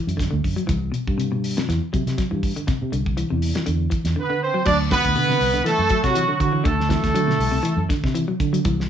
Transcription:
Already playing: clean electric guitar E3
0.07 fingered electric bass F#2, closed hi-hat
0.17 clean electric guitar D3, kick, snare, closed hi-hat
0.31 fingered electric bass D2, clean electric guitar D3
0.44 fingered electric bass F#2, kick, open hi-hat
0.56 clean electric guitar F#3, closed hi-hat
0.67 fingered electric bass C2, clean electric guitar E3, kick, closed hi-hat
0.92 clean electric guitar B2, closed hi-hat
1.07 fingered electric bass G2, kick
1.18 clean electric guitar C3, closed hi-hat
1.32 clean electric guitar B2
1.44 open hi-hat
1.57 clean electric guitar C3, snare, closed hi-hat
1.69 fingered electric bass E2, clean electric guitar E3, snare, closed hi-hat
1.93 fingered electric bass C3, clean electric guitar F#3, kick, closed hi-hat
2.07 fingered electric bass C3, snare, closed hi-hat
2.18 clean electric guitar F#3, kick, snare, closed hi-hat
2.31 fingered electric bass G2, clean electric guitar E3
2.43 kick, open hi-hat
2.56 clean electric guitar D3, closed hi-hat
2.67 clean electric guitar C3, kick, snare, closed hi-hat
2.82 fingered electric bass C3
2.92 fingered electric bass C2, clean electric guitar D3, closed hi-hat
3.06 kick
3.17 clean electric guitar E3, closed hi-hat
3.30 fingered electric bass E2, clean electric guitar C3
3.42 open hi-hat
3.55 clean electric guitar E3, snare, closed hi-hat
3.66 fingered electric bass E2, clean electric guitar D3, closed hi-hat
3.90 clean electric guitar E3, kick, closed hi-hat
4.05 fingered electric bass E2, snare, closed hi-hat
4.16 clean electric guitar D3, horn section B3 B4
4.30 clean electric guitar D3
4.43 horn section C4 C5
4.54 clean electric guitar F#3
4.65 fingered electric bass D2, clean electric guitar F#3, horn section D4 D5, kick, snare, crash
4.91 clean electric guitar D3, horn section B3 B4, kick, snare, closed hi-hat
5.04 fingered electric bass D2, kick, snare, closed hi-hat
5.15 clean electric guitar B2, fingered electric bass D3, closed hi-hat
5.28 clean electric guitar C3, snare
5.40 fingered electric bass C2, open hi-hat
5.54 clean electric guitar D3, closed hi-hat
5.64 clean electric guitar E3, horn section A3 A4, snare, closed hi-hat
5.78 fingered electric bass F#2
5.90 clean electric guitar F#3, kick, closed hi-hat
6.03 fingered electric bass C3, horn section F#3 F#4, kick, snare, closed hi-hat
6.15 clean electric guitar E3, closed hi-hat
6.28 clean electric guitar D3
6.40 fingered electric bass D3, horn section F#3 F#4, kick, closed hi-hat
6.53 clean electric guitar E3
6.64 fingered electric bass D2, clean electric guitar D3, horn section A3 A4, kick, closed hi-hat
6.80 snare
6.89 clean electric guitar E3, horn section A3 A4, kick, snare, closed hi-hat
7.04 fingered electric bass D2, kick, snare, closed hi-hat
7.14 fingered electric bass D3, clean electric guitar F#3, closed hi-hat
7.27 clean electric guitar B2, snare
7.38 fingered electric bass C2, open hi-hat
7.52 clean electric guitar C3
7.63 clean electric guitar E3, closed hi-hat
7.77 fingered electric bass F#2
7.89 clean electric guitar D3, kick, snare, closed hi-hat
8.04 fingered electric bass C3, kick, snare
8.15 clean electric guitar E3, closed hi-hat
8.28 clean electric guitar F#3
8.40 fingered electric bass D3, kick, closed hi-hat
8.53 clean electric guitar F#3, closed hi-hat
8.65 fingered electric bass C2, clean electric guitar E3, kick, closed hi-hat
8.80 snare

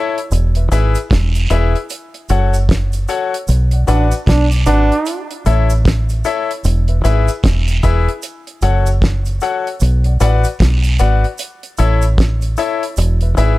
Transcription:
Already playing: grand piano E4 A4 C#5 E5
0.18 closed hi-hat
0.31 fingered electric bass E1, closed hi-hat, cabasa
0.55 grand piano B4 E5, closed hi-hat
0.72 fingered electric bass G#1, grand piano E4 G#4 B4 E5, closed hi-hat, cabasa
0.95 closed hi-hat, cabasa
1.10 fingered electric bass E1, kick, snare, closed hi-hat, long guiro
1.35 closed hi-hat, cabasa
1.50 fingered electric bass E1, grand piano E4 G#4 B4 E5, closed hi-hat, cabasa
1.75 closed hi-hat
1.90 closed hi-hat, cabasa
2.14 closed hi-hat
2.29 fingered electric bass F#1, grand piano F#4 A4 C#5 F#5, closed hi-hat, cabasa
2.54 closed hi-hat, cabasa
2.69 kick, snare, closed hi-hat
2.93 closed hi-hat, cabasa
3.08 grand piano F#4 A4 C#5 F#5, closed hi-hat, cabasa
3.34 closed hi-hat
3.48 fingered electric bass B1, closed hi-hat, cabasa
3.71 grand piano D5 F#5, closed hi-hat
3.87 fingered electric bass A1, trombone D4, grand piano F#4 B4 D5 F#5, closed hi-hat, cabasa
4.12 closed hi-hat, cabasa
4.26 fingered electric bass B1, trombone D4, kick, snare, closed hi-hat, long guiro
4.51 closed hi-hat, cabasa
4.66 fingered electric bass G#1, trombone D4, grand piano F#4 B4 D5 F#5, closed hi-hat, cabasa
4.92 closed hi-hat
5.06 closed hi-hat, cabasa
5.31 closed hi-hat
5.46 fingered electric bass A1, grand piano E4 A4 C#5 E5, closed hi-hat, cabasa
5.70 closed hi-hat, cabasa
5.85 kick, snare, closed hi-hat
6.09 closed hi-hat, cabasa
6.24 grand piano E4 A4 C#5 E5, closed hi-hat, cabasa
6.51 closed hi-hat
6.64 fingered electric bass E1, closed hi-hat, cabasa
6.88 grand piano B4 E5, closed hi-hat
7.04 fingered electric bass G#1, grand piano E4 G#4 B4 E5, closed hi-hat, cabasa
7.28 closed hi-hat, cabasa
7.43 fingered electric bass E1, kick, snare, closed hi-hat, long guiro
7.68 closed hi-hat, cabasa
7.83 fingered electric bass E1, grand piano E4 G#4 B4 E5, kick, closed hi-hat, cabasa
8.09 closed hi-hat
8.22 closed hi-hat, cabasa
8.47 closed hi-hat
8.62 fingered electric bass F#1, grand piano F#4 A4 C#5 F#5, closed hi-hat, cabasa
8.86 closed hi-hat, cabasa
9.02 kick, snare, closed hi-hat
9.25 closed hi-hat, cabasa
9.40 grand piano F#4 A4 C#5 F#5, closed hi-hat, cabasa
9.67 closed hi-hat
9.80 fingered electric bass B1, closed hi-hat, cabasa
10.04 grand piano D5 F#5, closed hi-hat
10.20 fingered electric bass A1, grand piano F#4 B4 D5 F#5, closed hi-hat, cabasa
10.44 closed hi-hat, cabasa
10.59 fingered electric bass B1, kick, snare, closed hi-hat, long guiro
10.84 closed hi-hat, cabasa
10.99 fingered electric bass G#1, grand piano F#4 B4 D5 F#5, closed hi-hat, cabasa
11.24 closed hi-hat
11.38 closed hi-hat, cabasa
11.63 closed hi-hat
11.78 fingered electric bass A1, grand piano E4 A4 C#5 E5, closed hi-hat, cabasa
12.02 closed hi-hat, cabasa
12.18 kick, snare, closed hi-hat
12.41 closed hi-hat, cabasa
12.57 grand piano E4 A4 C#5 E5, closed hi-hat, cabasa
12.83 closed hi-hat
12.97 fingered electric bass E1, closed hi-hat, cabasa
13.21 grand piano B4 E5, closed hi-hat
13.37 fingered electric bass G#1, grand piano E4 G#4 B4 E5, closed hi-hat, cabasa

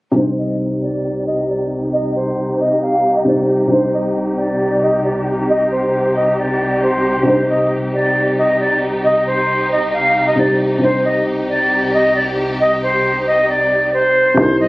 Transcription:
0.12 string section C2 C3 D#4 G4, grand piano C3 G3, flute C5
0.16 grand piano D#4 C5
0.37 flute D#5
0.82 flute D5
1.26 flute D#5
1.48 flute D5
1.92 flute D#5
2.15 flute C5
2.60 flute D#5
2.82 flute F5
3.15 flute D#5
3.25 grand piano C3 G3 D#4 C5, flute D5
3.67 grand piano C3 G3, flute C5
3.72 grand piano D#4 C5
3.93 flute D#5
4.37 flute D5
4.82 flute D#5
5.04 flute D5
5.49 flute D#5
5.71 flute C5
6.15 flute D#5
6.37 flute D5
6.82 flute C5
7.23 grand piano C3 G3, string section D#4, flute C5
7.27 grand piano D#4 C5
7.49 flute D#5
7.93 flute D5
8.38 flute D#5
8.60 flute D5
9.04 flute D#5
9.26 flute C5
9.71 flute D#5
9.93 flute F5
10.26 flute D#5
10.36 grand piano C3 G3 D#4 C5, flute D5
10.78 string section C2 C3 G4, grand piano C3 G3, flute C5
10.83 grand piano D#4 C5
11.04 flute D#5
11.49 flute D5
11.93 flute D#5
12.15 flute D5
12.60 flute D#5
12.82 flute C5
13.26 flute D#5
13.49 flute D5
13.93 flute C5
14.34 808-style bass C2, grand piano C3 G3, flute C5
14.39 grand piano D#4 C5
14.60 flute D#5

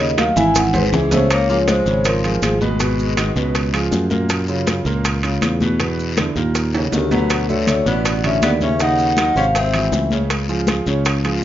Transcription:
Already playing: fingered electric bass D#2, grand piano C#3 C#4 C#5
0.00 vibraphone D#5, high bongo, maracas
0.17 grand piano F#3 F#4 A#4, vibraphone F5, high bongo, high conga, high timbale, short guiro, maracas
0.36 fingered electric bass G#1, grand piano E3 E4 E5, vibraphone G#5, high bongo, high conga, short guiro, maracas
0.54 vibraphone F#5, high bongo, low conga, high timbale, long guiro, maracas
0.74 grand piano G#3 G#4 C5, vibraphone B4, high bongo, low conga, high timbale, maracas
0.92 fingered electric bass C#2, tenor saxophone E3, vibraphone G#4, high bongo, low bongo, low conga, short guiro, maracas
1.11 grand piano C#3 C#4 C#5, tenor saxophone A3, vibraphone C5, low conga, low timbale, short guiro, maracas
1.30 tenor saxophone A#3, vibraphone C#5, high bongo, high conga, high timbale, long guiro, maracas
1.49 grand piano F3 F4 G#4, tenor saxophone A#3, vibraphone C#5, high conga, maracas
1.67 grand piano F3 F4 G#4, tenor saxophone G#3, vibraphone C5, high bongo, high conga, high timbale, short guiro, maracas
1.86 fingered electric bass G#1, grand piano C#3 C#4 C#5, high bongo, high conga, short guiro, maracas
2.05 tenor saxophone F3, vibraphone A#4, high bongo, high conga, high timbale, long guiro, maracas
2.24 grand piano F3 F4 G#4, high bongo, high conga, high timbale, maracas
2.42 fingered electric bass G#1, tenor saxophone F3, vibraphone G#4, high bongo, low bongo, high conga, high timbale, short guiro, maracas
2.61 grand piano B2 B3 B4, tenor saxophone G#3, vibraphone B4, high bongo, high conga, short guiro, maracas
2.80 grand piano B2 B3 B4, high bongo, high timbale, long guiro, maracas
2.99 high conga, maracas
3.17 grand piano D#3 D#4 F#4, high bongo, high conga, high timbale, short guiro, maracas
3.36 fingered electric bass C#2, grand piano B2 B3 B4, high bongo, high conga, short guiro, maracas
3.55 high bongo, high conga, high timbale, long guiro, maracas
3.73 grand piano F3 F4 G#4, high bongo, high conga, high timbale, maracas
3.91 fingered electric bass F#2, high bongo, low bongo, high conga, short guiro, maracas
4.10 grand piano A#2 A#3 A#4, high bongo, high conga, short guiro, maracas
4.29 high bongo, high conga, high timbale, long guiro, maracas
4.48 grand piano C#3 C#4 F4, high conga, maracas
4.67 grand piano C#3 C#4 F4, high bongo, high conga, high timbale, short guiro, maracas
4.85 fingered electric bass C#2, grand piano A#2 A#3 A#4, high bongo, high conga, short guiro, maracas
5.04 high bongo, high conga, high timbale, long guiro, maracas
5.23 grand piano C#3 C#4 F4, high bongo, high conga, high timbale, maracas
5.41 fingered electric bass E2, high bongo, low bongo, high conga, high timbale, short guiro, maracas
5.60 grand piano B2 B3 B4, high bongo, high conga, short guiro, maracas
5.79 grand piano B2 B3 B4, high bongo, high conga, high timbale, long guiro, maracas
5.98 high conga, maracas
6.17 grand piano D3 D4 E4, high bongo, high conga, high timbale, short guiro, maracas
6.36 fingered electric bass D#2, grand piano A#2 A#3 A#4, high bongo, high conga, short guiro, maracas
6.55 high bongo, high conga, high timbale, long guiro, maracas
6.73 grand piano C#3 C#4 D#4, high bongo, high conga, high timbale, maracas
6.92 fingered electric bass D2, tenor saxophone D#3, vibraphone G4, high bongo, low bongo, high conga, low timbale, short guiro, maracas
7.11 grand piano B2 B3 B4, tenor saxophone F#3, vibraphone B4, high bongo, high conga, low timbale, short guiro, maracas
7.30 high bongo, high timbale, long guiro, maracas
7.48 grand piano D3 D4 F#4, tenor saxophone A3, vibraphone C#5, high conga, maracas
7.67 grand piano D3 D4 F#4, tenor saxophone A3, vibraphone C#5, high bongo, high conga, high timbale, short guiro, maracas
7.85 fingered electric bass A1, grand piano B2 B3 B4, tenor saxophone B3, vibraphone D5, high bongo, high conga, short guiro, maracas
8.05 high bongo, high conga, high timbale, long guiro, maracas
8.23 grand piano D3 D4 F#4, tenor saxophone C#4, vibraphone E5, high bongo, high conga, high timbale, maracas
8.42 fingered electric bass D#2, tenor saxophone B3, vibraphone D5, high bongo, low bongo, high conga, high timbale, low timbale, short guiro, maracas
8.61 grand piano C#3 C#4 C#5, tenor saxophone C#4, vibraphone E5, high bongo, high conga, short guiro, maracas
8.79 grand piano C#3 C#4 C#5, tenor saxophone D#4, vibraphone F#5, high bongo, high conga, high timbale, long guiro, maracas
8.98 high conga, maracas
9.17 grand piano F#3 F#4 A#4, tenor saxophone D#4, vibraphone F#5, high bongo, high conga, high timbale, short guiro, maracas
9.36 fingered electric bass G#1, grand piano C3 C4 C5, tenor saxophone C#4, vibraphone F5, high bongo, high conga, short guiro, maracas
9.55 tenor saxophone C4, vibraphone E5, high bongo, high conga, high timbale, long guiro, maracas
9.73 grand piano E3 E4 F#4, high bongo, high conga, high timbale, maracas
9.92 fingered electric bass C#2, high bongo, low bongo, high conga, short guiro, maracas
10.11 grand piano C#3 C#4 C#5, high bongo, high conga, short guiro, maracas
10.30 high bongo, high conga, high timbale, long guiro, maracas
10.48 grand piano F3 F4 G#4, high conga, maracas
10.67 grand piano F3 F4 G#4, high bongo, high conga, high timbale, short guiro, maracas
10.86 fingered electric bass C#2, grand piano C#3 C#4 C#5, high bongo, high conga, short guiro, maracas
11.04 high bongo, high conga, high timbale, long guiro, maracas
11.23 grand piano F3 F4 G#4, high bongo, high conga, high timbale, maracas

